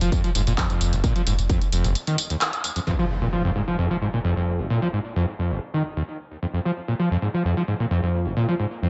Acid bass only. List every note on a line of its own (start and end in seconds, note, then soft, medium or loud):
0.01 0.10 F3 medium
0.12 0.22 F2 loud
0.24 0.30 F3 medium
0.35 0.42 G#2 medium
0.47 0.53 A#2 medium
0.58 0.68 F2 loud
0.70 0.94 F2 medium
0.93 1.02 F1 loud
1.04 1.14 A#2 loud
1.16 1.22 F3 medium
1.27 1.33 G#2 medium
1.50 1.59 F2 loud
1.72 1.86 F2 medium
1.84 1.93 F1 loud
2.07 2.16 D#3 medium
2.30 2.36 D#2 medium
2.76 2.80 F2 medium
2.87 2.94 F2 medium
2.99 3.05 F3 medium
3.22 3.28 A#2 medium
3.33 3.43 F3 medium
3.45 3.51 F2 loud
3.56 3.62 G#2 medium
3.68 3.77 F3 medium
3.79 3.88 F2 loud
3.91 3.97 F3 medium
4.02 4.08 G#2 medium
4.14 4.19 A#2 medium
4.24 4.34 F2 loud
4.36 4.61 F2 medium
4.59 4.68 F1 loud
4.70 4.80 A#2 loud
4.82 4.88 F3 medium
4.93 5.00 G#2 medium
5.16 5.26 F2 loud
5.39 5.52 F2 medium
5.51 5.60 F1 loud
5.74 5.83 D#3 medium
5.97 6.03 D#2 medium
6.42 6.46 F2 medium
6.53 6.60 F2 medium
6.65 6.71 F3 medium
6.88 6.94 A#2 medium
6.99 7.09 F3 medium
7.11 7.17 F2 loud
7.22 7.29 G#2 medium
7.34 7.43 F3 medium
7.45 7.55 F2 loud
7.57 7.63 F3 medium
7.68 7.74 G#2 medium
7.80 7.86 A#2 medium
7.91 8.01 F2 loud
8.03 8.27 F2 medium
8.26 8.35 F1 loud
8.37 8.46 A#2 loud
8.49 8.55 F3 medium
8.60 8.66 G#2 medium
8.82 8.89 F2 loud